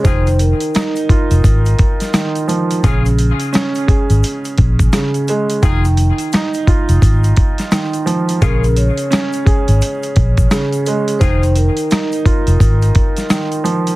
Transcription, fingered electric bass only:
X:1
M:4/4
L:1/16
Q:"Swing 16ths" 1/4=86
K:Bbm
V:1 name="Fingered electric bass" clef=bass
F,,,3 z4 F,,, A,,,2 z6 | B,,,3 z4 A,,, z2 B,,,2 z4 | F,,,3 z4 F,,, A,,,2 z6 | B,,,3 z4 A,,, z2 B,,,2 z4 |
F,,,3 z4 F,,, A,,,2 z6 |]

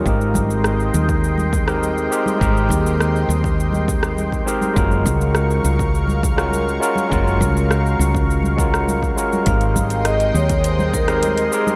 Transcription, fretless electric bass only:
X:1
M:4/4
L:1/8
Q:1/4=102
K:Ab
V:1 name="Fretless electric bass" clef=bass
A,,,3 E,,4 z | A,,, E,,2 E,,4 z | _G,,, D,,2 D,,4 z | _G,,, D,,2 D,,4 z |
A,,,3 E,,4 z |]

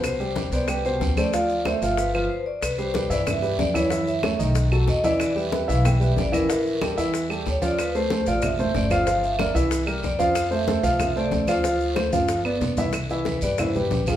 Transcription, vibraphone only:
X:1
M:4/4
L:1/8
Q:1/4=186
K:C
V:1 name="Vibraphone"
c3 d B c2 d- | d2 e2 B2 c d | B c2 d e2 d _d- | _d e2 z3 ^d =d- |
d e2 f g e d _B- | _B3 z3 _d =d | B c2 d e2 d c- | c e2 z3 d c- |
c e2 f e d d c- | c3 z4 z | z2 B d c B2 z |]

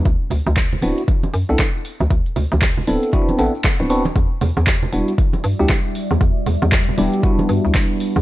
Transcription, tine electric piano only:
X:1
M:4/4
L:1/16
Q:"Swing 16ths" 1/4=117
K:Em
V:1 name="Tine electric piano"
z6 [B,CDEF] z4 [B,CDEA] z4 | z6 [B,CDEA]2 [B,CDEF]2 [B,CDEA] z2 [B,CDEF] [B,CDEF] z | z6 [G,B,DEF] z4 [G,B,DEG] z4 | z6 [G,B,DEG]2 [G,B,DEF]8 |]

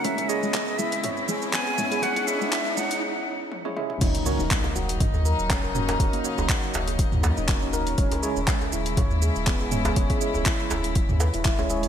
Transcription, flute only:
X:1
M:4/4
L:1/8
Q:"Swing 16ths" 1/4=121
K:Ebphr
V:1 name="Flute"
f e2 f f z a2 | g f2 g z4 | z8 | z8 |
z8 | z8 |]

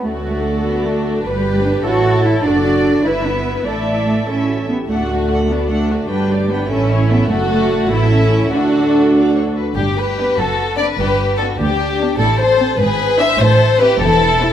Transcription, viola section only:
X:1
M:6/8
L:1/8
Q:3/8=99
K:D
V:1 name="Viola section"
[FA]6 | [GB]3 [EA]3 | [FA]3 [EB]3 | [Ed]3 [EA]2 z |
[DA] F [DA] F [DA] F | [DB] [Gd] [DB] [CA] [Ec] [CA] | [FA]3 [EA]3 | [FA]4- [FA] z |
[K:G] z2 [B,D] z2 [CD] | z2 [B,D] z2 [B,D] | z2 C z2 [DE] | z2 [CE] z2 [CE] |]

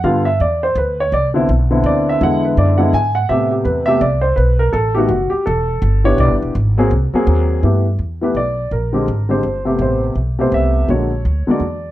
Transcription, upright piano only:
X:1
M:3/4
L:1/8
Q:"Swing" 1/4=166
K:G
V:1 name="Upright piano"
=f e d c B ^c | d z3 d e | f B d f ^g f | e G B e d c |
B _B A G F G | A3 ^c d z | z6 | z3 B d2 |
_B3 c3 | c z2 c e2 | ^c3 d3 |]
V:2 name="Upright piano"
[D,G,B,=F] z4 z | z [D,B,CE] z [D,B,CE]3 | [D,^G,B,E]3 [D,G,B,E] z2 | [C,A,B,G]3 [C,A,B,G] z2 |
z3 [^D,A,B,F] z2 | z3 [E,B,DG]3 | z [_G,_B,C_A] z [G,B,CA]3 | [E,A,B,G] z2 [E,A,B,G] z2 |
z [D,_A,CG] z [D,A,CG] z [C,=A,B,G]- | [C,A,B,G]2 z [C,A,B,G]3 | [D,_A,_B,F] z2 [D,A,B,F] z2 |]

